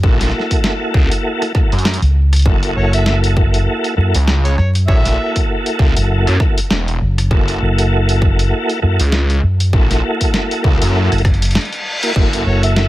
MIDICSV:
0, 0, Header, 1, 7, 480
1, 0, Start_track
1, 0, Tempo, 606061
1, 28, Time_signature, 4, 2, 24, 8
1, 10203, End_track
2, 0, Start_track
2, 0, Title_t, "Harmonica"
2, 0, Program_c, 0, 22
2, 2192, Note_on_c, 0, 73, 89
2, 2300, Note_off_c, 0, 73, 0
2, 2327, Note_on_c, 0, 76, 95
2, 2392, Note_off_c, 0, 76, 0
2, 2427, Note_on_c, 0, 76, 77
2, 2515, Note_off_c, 0, 76, 0
2, 3522, Note_on_c, 0, 73, 93
2, 3589, Note_off_c, 0, 73, 0
2, 3626, Note_on_c, 0, 73, 74
2, 3715, Note_off_c, 0, 73, 0
2, 3865, Note_on_c, 0, 73, 66
2, 3865, Note_on_c, 0, 76, 95
2, 3935, Note_off_c, 0, 73, 0
2, 4244, Note_off_c, 0, 76, 0
2, 9870, Note_on_c, 0, 73, 89
2, 9979, Note_off_c, 0, 73, 0
2, 10008, Note_on_c, 0, 76, 95
2, 10072, Note_off_c, 0, 76, 0
2, 10111, Note_on_c, 0, 76, 80
2, 10197, Note_off_c, 0, 76, 0
2, 10203, End_track
3, 0, Start_track
3, 0, Title_t, "Tonewheel organ"
3, 0, Program_c, 1, 16
3, 25, Note_on_c, 1, 58, 92
3, 25, Note_on_c, 1, 66, 84
3, 26, Note_on_c, 1, 69, 104
3, 27, Note_on_c, 1, 64, 82
3, 1206, Note_off_c, 1, 58, 0
3, 1206, Note_off_c, 1, 66, 0
3, 1207, Note_off_c, 1, 64, 0
3, 1207, Note_off_c, 1, 69, 0
3, 1226, Note_on_c, 1, 64, 71
3, 1226, Note_on_c, 1, 66, 72
3, 1227, Note_on_c, 1, 58, 77
3, 1227, Note_on_c, 1, 69, 87
3, 1386, Note_off_c, 1, 66, 0
3, 1387, Note_off_c, 1, 58, 0
3, 1387, Note_off_c, 1, 64, 0
3, 1387, Note_off_c, 1, 69, 0
3, 1945, Note_on_c, 1, 58, 91
3, 1945, Note_on_c, 1, 64, 83
3, 1945, Note_on_c, 1, 66, 86
3, 1945, Note_on_c, 1, 69, 104
3, 3126, Note_off_c, 1, 58, 0
3, 3126, Note_off_c, 1, 64, 0
3, 3126, Note_off_c, 1, 66, 0
3, 3126, Note_off_c, 1, 69, 0
3, 3142, Note_on_c, 1, 66, 72
3, 3142, Note_on_c, 1, 69, 85
3, 3143, Note_on_c, 1, 58, 76
3, 3143, Note_on_c, 1, 64, 73
3, 3305, Note_off_c, 1, 58, 0
3, 3305, Note_off_c, 1, 64, 0
3, 3305, Note_off_c, 1, 66, 0
3, 3305, Note_off_c, 1, 69, 0
3, 3862, Note_on_c, 1, 69, 102
3, 3863, Note_on_c, 1, 58, 93
3, 3863, Note_on_c, 1, 64, 82
3, 3863, Note_on_c, 1, 66, 86
3, 5045, Note_off_c, 1, 58, 0
3, 5045, Note_off_c, 1, 64, 0
3, 5045, Note_off_c, 1, 66, 0
3, 5045, Note_off_c, 1, 69, 0
3, 5067, Note_on_c, 1, 64, 74
3, 5067, Note_on_c, 1, 66, 73
3, 5067, Note_on_c, 1, 69, 86
3, 5068, Note_on_c, 1, 58, 77
3, 5227, Note_off_c, 1, 64, 0
3, 5227, Note_off_c, 1, 66, 0
3, 5227, Note_off_c, 1, 69, 0
3, 5228, Note_off_c, 1, 58, 0
3, 5786, Note_on_c, 1, 58, 97
3, 5786, Note_on_c, 1, 66, 88
3, 5787, Note_on_c, 1, 64, 89
3, 5787, Note_on_c, 1, 69, 105
3, 6966, Note_off_c, 1, 66, 0
3, 6967, Note_off_c, 1, 58, 0
3, 6967, Note_off_c, 1, 64, 0
3, 6967, Note_off_c, 1, 69, 0
3, 6987, Note_on_c, 1, 58, 83
3, 6987, Note_on_c, 1, 66, 75
3, 6988, Note_on_c, 1, 64, 69
3, 6988, Note_on_c, 1, 69, 89
3, 7147, Note_off_c, 1, 58, 0
3, 7147, Note_off_c, 1, 66, 0
3, 7148, Note_off_c, 1, 64, 0
3, 7148, Note_off_c, 1, 69, 0
3, 7706, Note_on_c, 1, 58, 93
3, 7706, Note_on_c, 1, 69, 108
3, 7707, Note_on_c, 1, 66, 87
3, 7708, Note_on_c, 1, 64, 85
3, 8886, Note_off_c, 1, 69, 0
3, 8887, Note_off_c, 1, 58, 0
3, 8887, Note_off_c, 1, 64, 0
3, 8887, Note_off_c, 1, 66, 0
3, 9525, Note_on_c, 1, 64, 81
3, 9526, Note_on_c, 1, 58, 88
3, 9526, Note_on_c, 1, 66, 77
3, 9526, Note_on_c, 1, 70, 99
3, 9603, Note_off_c, 1, 58, 0
3, 9603, Note_off_c, 1, 64, 0
3, 9603, Note_off_c, 1, 70, 0
3, 9604, Note_off_c, 1, 66, 0
3, 9628, Note_on_c, 1, 64, 86
3, 9628, Note_on_c, 1, 66, 84
3, 9628, Note_on_c, 1, 69, 101
3, 9629, Note_on_c, 1, 58, 92
3, 10203, Note_off_c, 1, 58, 0
3, 10203, Note_off_c, 1, 64, 0
3, 10203, Note_off_c, 1, 66, 0
3, 10203, Note_off_c, 1, 69, 0
3, 10203, End_track
4, 0, Start_track
4, 0, Title_t, "Detuned saw bass"
4, 0, Program_c, 2, 39
4, 28, Note_on_c, 2, 34, 98
4, 252, Note_off_c, 2, 34, 0
4, 746, Note_on_c, 2, 37, 98
4, 862, Note_off_c, 2, 37, 0
4, 1365, Note_on_c, 2, 42, 97
4, 1583, Note_off_c, 2, 42, 0
4, 1946, Note_on_c, 2, 30, 97
4, 2170, Note_off_c, 2, 30, 0
4, 3288, Note_on_c, 2, 37, 99
4, 3613, Note_off_c, 2, 37, 0
4, 3870, Note_on_c, 2, 34, 91
4, 4093, Note_off_c, 2, 34, 0
4, 4588, Note_on_c, 2, 37, 98
4, 4703, Note_off_c, 2, 37, 0
4, 4971, Note_on_c, 2, 42, 89
4, 5054, Note_off_c, 2, 42, 0
4, 5315, Note_on_c, 2, 28, 94
4, 5535, Note_off_c, 2, 28, 0
4, 5790, Note_on_c, 2, 30, 91
4, 6012, Note_off_c, 2, 30, 0
4, 7129, Note_on_c, 2, 37, 99
4, 7453, Note_off_c, 2, 37, 0
4, 7708, Note_on_c, 2, 34, 90
4, 7931, Note_off_c, 2, 34, 0
4, 8431, Note_on_c, 2, 37, 100
4, 8545, Note_off_c, 2, 37, 0
4, 8570, Note_on_c, 2, 42, 99
4, 8786, Note_off_c, 2, 42, 0
4, 9630, Note_on_c, 2, 30, 88
4, 9853, Note_off_c, 2, 30, 0
4, 10203, End_track
5, 0, Start_track
5, 0, Title_t, "Fingered electric bass"
5, 0, Program_c, 3, 33
5, 1599, Note_on_c, 3, 37, 94
5, 1928, Note_off_c, 3, 37, 0
5, 2187, Note_on_c, 3, 30, 99
5, 2891, Note_off_c, 3, 30, 0
5, 3147, Note_on_c, 3, 42, 92
5, 3263, Note_off_c, 3, 42, 0
5, 3628, Note_on_c, 3, 42, 100
5, 3851, Note_off_c, 3, 42, 0
5, 4729, Note_on_c, 3, 30, 100
5, 4945, Note_off_c, 3, 30, 0
5, 5553, Note_on_c, 3, 30, 102
5, 5774, Note_off_c, 3, 30, 0
5, 6033, Note_on_c, 3, 30, 101
5, 6734, Note_off_c, 3, 30, 0
5, 6992, Note_on_c, 3, 42, 92
5, 7105, Note_off_c, 3, 42, 0
5, 7469, Note_on_c, 3, 42, 99
5, 7692, Note_off_c, 3, 42, 0
5, 8806, Note_on_c, 3, 30, 96
5, 9148, Note_off_c, 3, 30, 0
5, 9869, Note_on_c, 3, 30, 100
5, 10203, Note_off_c, 3, 30, 0
5, 10203, End_track
6, 0, Start_track
6, 0, Title_t, "Reverse cymbal"
6, 0, Program_c, 4, 119
6, 8667, Note_on_c, 4, 60, 62
6, 9627, Note_off_c, 4, 60, 0
6, 10203, End_track
7, 0, Start_track
7, 0, Title_t, "Drums"
7, 27, Note_on_c, 9, 36, 123
7, 107, Note_off_c, 9, 36, 0
7, 165, Note_on_c, 9, 38, 38
7, 165, Note_on_c, 9, 42, 53
7, 233, Note_off_c, 9, 38, 0
7, 233, Note_on_c, 9, 38, 31
7, 244, Note_off_c, 9, 42, 0
7, 312, Note_off_c, 9, 38, 0
7, 313, Note_on_c, 9, 38, 25
7, 393, Note_off_c, 9, 38, 0
7, 404, Note_on_c, 9, 36, 62
7, 404, Note_on_c, 9, 42, 65
7, 483, Note_off_c, 9, 36, 0
7, 483, Note_off_c, 9, 42, 0
7, 506, Note_on_c, 9, 38, 127
7, 585, Note_off_c, 9, 38, 0
7, 746, Note_on_c, 9, 36, 115
7, 825, Note_off_c, 9, 36, 0
7, 883, Note_on_c, 9, 42, 65
7, 962, Note_off_c, 9, 42, 0
7, 1124, Note_on_c, 9, 37, 38
7, 1124, Note_on_c, 9, 42, 39
7, 1203, Note_off_c, 9, 37, 0
7, 1203, Note_off_c, 9, 42, 0
7, 1225, Note_on_c, 9, 37, 51
7, 1226, Note_on_c, 9, 36, 112
7, 1304, Note_off_c, 9, 37, 0
7, 1305, Note_off_c, 9, 36, 0
7, 1364, Note_on_c, 9, 42, 31
7, 1414, Note_off_c, 9, 42, 0
7, 1414, Note_on_c, 9, 42, 41
7, 1466, Note_off_c, 9, 42, 0
7, 1466, Note_on_c, 9, 38, 127
7, 1466, Note_on_c, 9, 42, 48
7, 1534, Note_off_c, 9, 42, 0
7, 1534, Note_on_c, 9, 42, 57
7, 1546, Note_off_c, 9, 38, 0
7, 1603, Note_off_c, 9, 42, 0
7, 1603, Note_on_c, 9, 42, 37
7, 1683, Note_off_c, 9, 42, 0
7, 1844, Note_on_c, 9, 37, 37
7, 1844, Note_on_c, 9, 42, 65
7, 1872, Note_off_c, 9, 42, 0
7, 1872, Note_on_c, 9, 42, 52
7, 1896, Note_off_c, 9, 42, 0
7, 1896, Note_on_c, 9, 42, 42
7, 1919, Note_off_c, 9, 42, 0
7, 1919, Note_on_c, 9, 42, 35
7, 1923, Note_off_c, 9, 37, 0
7, 1945, Note_on_c, 9, 36, 124
7, 1998, Note_off_c, 9, 42, 0
7, 2025, Note_off_c, 9, 36, 0
7, 2081, Note_on_c, 9, 42, 51
7, 2160, Note_off_c, 9, 42, 0
7, 2322, Note_on_c, 9, 42, 64
7, 2401, Note_off_c, 9, 42, 0
7, 2424, Note_on_c, 9, 38, 118
7, 2503, Note_off_c, 9, 38, 0
7, 2563, Note_on_c, 9, 42, 51
7, 2643, Note_off_c, 9, 42, 0
7, 2666, Note_on_c, 9, 36, 107
7, 2745, Note_off_c, 9, 36, 0
7, 2803, Note_on_c, 9, 42, 60
7, 2883, Note_off_c, 9, 42, 0
7, 3044, Note_on_c, 9, 42, 39
7, 3123, Note_off_c, 9, 42, 0
7, 3283, Note_on_c, 9, 42, 64
7, 3363, Note_off_c, 9, 42, 0
7, 3386, Note_on_c, 9, 38, 123
7, 3465, Note_off_c, 9, 38, 0
7, 3525, Note_on_c, 9, 42, 36
7, 3604, Note_off_c, 9, 42, 0
7, 3627, Note_on_c, 9, 37, 39
7, 3707, Note_off_c, 9, 37, 0
7, 3763, Note_on_c, 9, 42, 61
7, 3842, Note_off_c, 9, 42, 0
7, 3867, Note_on_c, 9, 36, 116
7, 3947, Note_off_c, 9, 36, 0
7, 4003, Note_on_c, 9, 38, 37
7, 4003, Note_on_c, 9, 42, 52
7, 4082, Note_off_c, 9, 38, 0
7, 4082, Note_off_c, 9, 42, 0
7, 4244, Note_on_c, 9, 42, 61
7, 4245, Note_on_c, 9, 36, 59
7, 4323, Note_off_c, 9, 42, 0
7, 4324, Note_off_c, 9, 36, 0
7, 4484, Note_on_c, 9, 42, 51
7, 4563, Note_off_c, 9, 42, 0
7, 4588, Note_on_c, 9, 36, 108
7, 4667, Note_off_c, 9, 36, 0
7, 4725, Note_on_c, 9, 42, 62
7, 4804, Note_off_c, 9, 42, 0
7, 4968, Note_on_c, 9, 37, 40
7, 4968, Note_on_c, 9, 42, 39
7, 5047, Note_off_c, 9, 37, 0
7, 5047, Note_off_c, 9, 42, 0
7, 5068, Note_on_c, 9, 36, 102
7, 5070, Note_on_c, 9, 37, 54
7, 5147, Note_off_c, 9, 36, 0
7, 5149, Note_off_c, 9, 37, 0
7, 5208, Note_on_c, 9, 42, 65
7, 5287, Note_off_c, 9, 42, 0
7, 5310, Note_on_c, 9, 38, 119
7, 5389, Note_off_c, 9, 38, 0
7, 5448, Note_on_c, 9, 42, 35
7, 5527, Note_off_c, 9, 42, 0
7, 5689, Note_on_c, 9, 37, 40
7, 5689, Note_on_c, 9, 42, 62
7, 5768, Note_off_c, 9, 37, 0
7, 5768, Note_off_c, 9, 42, 0
7, 5789, Note_on_c, 9, 36, 114
7, 5868, Note_off_c, 9, 36, 0
7, 5926, Note_on_c, 9, 42, 50
7, 6005, Note_off_c, 9, 42, 0
7, 6166, Note_on_c, 9, 42, 65
7, 6245, Note_off_c, 9, 42, 0
7, 6406, Note_on_c, 9, 42, 57
7, 6485, Note_off_c, 9, 42, 0
7, 6508, Note_on_c, 9, 36, 106
7, 6588, Note_off_c, 9, 36, 0
7, 6646, Note_on_c, 9, 42, 64
7, 6725, Note_off_c, 9, 42, 0
7, 6886, Note_on_c, 9, 42, 39
7, 6965, Note_off_c, 9, 42, 0
7, 7125, Note_on_c, 9, 42, 67
7, 7204, Note_off_c, 9, 42, 0
7, 7225, Note_on_c, 9, 38, 118
7, 7305, Note_off_c, 9, 38, 0
7, 7364, Note_on_c, 9, 42, 37
7, 7443, Note_off_c, 9, 42, 0
7, 7605, Note_on_c, 9, 42, 62
7, 7684, Note_off_c, 9, 42, 0
7, 7707, Note_on_c, 9, 36, 116
7, 7787, Note_off_c, 9, 36, 0
7, 7846, Note_on_c, 9, 38, 38
7, 7846, Note_on_c, 9, 42, 53
7, 7925, Note_off_c, 9, 38, 0
7, 7925, Note_off_c, 9, 42, 0
7, 8084, Note_on_c, 9, 42, 63
7, 8085, Note_on_c, 9, 36, 59
7, 8164, Note_off_c, 9, 36, 0
7, 8164, Note_off_c, 9, 42, 0
7, 8187, Note_on_c, 9, 38, 122
7, 8266, Note_off_c, 9, 38, 0
7, 8326, Note_on_c, 9, 42, 55
7, 8405, Note_off_c, 9, 42, 0
7, 8428, Note_on_c, 9, 36, 109
7, 8508, Note_off_c, 9, 36, 0
7, 8567, Note_on_c, 9, 42, 67
7, 8646, Note_off_c, 9, 42, 0
7, 8807, Note_on_c, 9, 37, 41
7, 8807, Note_on_c, 9, 42, 41
7, 8857, Note_off_c, 9, 42, 0
7, 8857, Note_on_c, 9, 42, 31
7, 8886, Note_off_c, 9, 37, 0
7, 8909, Note_off_c, 9, 42, 0
7, 8909, Note_on_c, 9, 36, 102
7, 8909, Note_on_c, 9, 37, 58
7, 8909, Note_on_c, 9, 42, 25
7, 8980, Note_off_c, 9, 42, 0
7, 8980, Note_on_c, 9, 42, 21
7, 8988, Note_off_c, 9, 36, 0
7, 8988, Note_off_c, 9, 37, 0
7, 9046, Note_off_c, 9, 42, 0
7, 9046, Note_on_c, 9, 42, 66
7, 9070, Note_off_c, 9, 42, 0
7, 9070, Note_on_c, 9, 42, 54
7, 9114, Note_off_c, 9, 42, 0
7, 9114, Note_on_c, 9, 42, 45
7, 9149, Note_off_c, 9, 42, 0
7, 9149, Note_on_c, 9, 38, 122
7, 9149, Note_on_c, 9, 42, 38
7, 9194, Note_off_c, 9, 42, 0
7, 9194, Note_on_c, 9, 42, 30
7, 9229, Note_off_c, 9, 38, 0
7, 9229, Note_off_c, 9, 42, 0
7, 9229, Note_on_c, 9, 42, 24
7, 9286, Note_off_c, 9, 42, 0
7, 9286, Note_on_c, 9, 42, 38
7, 9365, Note_off_c, 9, 42, 0
7, 9525, Note_on_c, 9, 42, 66
7, 9604, Note_off_c, 9, 42, 0
7, 9628, Note_on_c, 9, 49, 79
7, 9629, Note_on_c, 9, 36, 120
7, 9707, Note_off_c, 9, 49, 0
7, 9708, Note_off_c, 9, 36, 0
7, 9767, Note_on_c, 9, 42, 55
7, 9847, Note_off_c, 9, 42, 0
7, 10005, Note_on_c, 9, 42, 71
7, 10084, Note_off_c, 9, 42, 0
7, 10109, Note_on_c, 9, 38, 121
7, 10189, Note_off_c, 9, 38, 0
7, 10203, End_track
0, 0, End_of_file